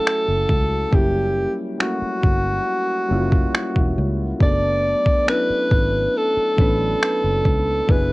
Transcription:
0.00 0.95 F#3 medium
0.00 0.95 A3 medium
0.00 0.93 C#4 medium
0.00 0.94 E4 medium
0.00 0.81 F#4 medium
0.00 0.94 G#4 medium
0.00 0.96 A4 medium
0.07 finger snap loud
0.28 0.46 F#1 medium
0.49 0.84 C#2 medium
0.49 kick medium
0.91 1.45 F#1 medium
0.91 1.70 G3 medium
0.91 1.70 A#3 medium
0.91 1.71 C#4 medium
0.91 1.72 E4 medium
0.91 1.54 G4 medium
0.91 kick loud
0.95 1.72 F#3 medium
1.78 2.96 G3 medium
1.78 1.86 A3 soft
1.78 2.97 C#4 medium
1.78 2.98 E4 medium
1.78 3.94 F#4 medium
1.78 finger snap loud
1.83 3.00 A#3 medium
1.83 2.98 F#4 medium
2.02 muted fingered electric bass stroke soft
2.23 2.58 G1 medium
2.23 kick medium
3.08 3.46 F#1 medium
3.08 4.26 G3 medium
3.08 4.27 A#3 medium
3.08 4.28 C#4 medium
3.08 4.28 E4 medium
3.13 3.18 F4 medium
3.20 4.32 F#4 medium
3.32 kick medium
3.55 finger snap loud
3.76 3.93 E1 medium
3.76 kick medium
3.98 4.33 C#2 medium
4.39 4.93 F#1 medium
4.39 5.18 F#3 medium
4.39 5.19 A3 medium
4.39 5.19 B3 medium
4.39 5.20 D4 medium
4.39 5.25 D5 loud
4.39 kick loud
4.44 5.20 A4 medium
5.06 kick medium
5.26 6.44 F#3 medium
5.26 6.44 B3 medium
5.26 6.45 C#4 medium
5.26 6.46 D4 medium
5.26 6.19 B4 loud
5.26 finger snap loud
5.31 6.46 E4 medium
5.50 muted fingered electric bass stroke soft
5.71 6.06 G#1 medium
5.71 kick medium
6.17 7.92 A4 medium
6.37 muted fingered electric bass stroke soft
6.57 6.93 A1 loud
6.57 7.74 F#3 medium
6.57 7.75 B3 medium
6.57 7.75 C#4 medium
6.57 7.76 D4 medium
6.57 kick medium
6.61 7.77 B4 medium
7.03 finger snap loud
7.24 7.41 F#1 medium
7.45 7.80 C#2 medium
7.45 kick medium
7.87 8.13 F#1 medium
7.87 8.13 F#3 medium
7.87 8.13 B3 medium
7.87 8.13 D4 medium
7.87 8.13 E4 medium
7.87 8.13 B4 medium
7.87 kick loud
7.92 8.13 G#4 medium

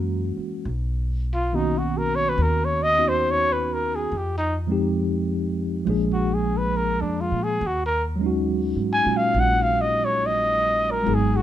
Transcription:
0.00 0.33 F#2 medium
0.00 0.63 E3 soft
0.00 0.65 G#3 soft
0.00 0.66 A#3 soft
0.00 0.68 C#4 soft
0.00 0.68 F#4 soft
0.37 muted upright bass stroke soft
0.65 2.34 B1 medium
1.34 1.57 F4 medium
1.53 4.12 D#3 medium
1.53 4.12 A#3 soft
1.53 2.95 B3 soft
1.53 2.97 C#4 soft
1.53 1.80 D#4 medium
1.53 2.98 F#4 medium
1.78 1.99 F#4 medium
1.97 2.17 A#4 medium
2.15 2.31 C#5 medium
2.29 2.44 B4 medium
2.38 4.07 D#2 medium
2.42 2.66 A#4 medium
2.65 2.84 C#5 medium
2.83 3.10 D#5 loud
2.96 4.12 B3 soft
2.96 4.13 C#4 soft
2.96 4.13 D#4 soft
2.96 4.13 F#4 soft
3.08 3.32 C5 medium
3.31 3.54 C#5 medium
3.53 3.75 B4 medium
3.73 3.97 A#4 medium
3.96 4.19 G#4 medium
4.12 5.81 F2 medium
4.17 4.37 G4 medium
4.38 4.56 D#4 medium
4.67 5.84 F3 medium
4.67 5.85 G#3 medium
4.67 5.86 C4 medium
4.71 5.86 D#4 medium
4.71 5.87 G4 medium
5.85 6.98 A#1 medium
5.85 7.60 F3 medium
5.85 7.60 G#3 medium
5.85 7.61 A#3 medium
5.85 7.62 D4 medium
5.90 7.62 G#4 medium
6.13 6.36 F#4 medium
6.34 6.59 G#4 medium
6.57 6.78 B4 medium
6.77 7.03 A#4 medium
7.01 7.29 F2 medium
7.01 7.22 D4 medium
7.21 7.45 F4 medium
7.32 7.58 A#2 medium
7.43 7.68 G#4 medium
7.61 8.72 D#2 medium
7.67 7.86 F#4 medium
7.86 8.04 A#4 medium
8.16 11.02 F#3 medium
8.16 9.04 G#3 medium
8.21 9.04 C#4 medium
8.21 11.06 D#4 medium
8.26 11.11 F#4 medium
8.76 9.03 G#2 medium
8.93 9.18 G#5 medium
9.05 9.32 A#2 medium
9.05 11.03 G#3 soft
9.05 11.07 A#3 soft
9.05 11.07 C#4 soft
9.05 11.08 F4 soft
9.17 9.41 F5 medium
9.34 11.03 A#1 medium
9.40 9.64 F#5 medium
9.62 9.83 F5 medium
9.81 10.06 D#5 medium
10.05 10.28 C#5 medium
10.26 10.93 D#5 medium
10.91 11.16 A#4 medium
11.03 11.42 G#1 medium
11.03 11.42 F#3 medium
11.03 11.42 G#3 soft
11.03 11.42 B3 soft
11.07 11.42 D#4 medium
11.07 11.42 G#4 medium
11.14 11.38 G#4 medium
11.36 11.42 F#4 medium

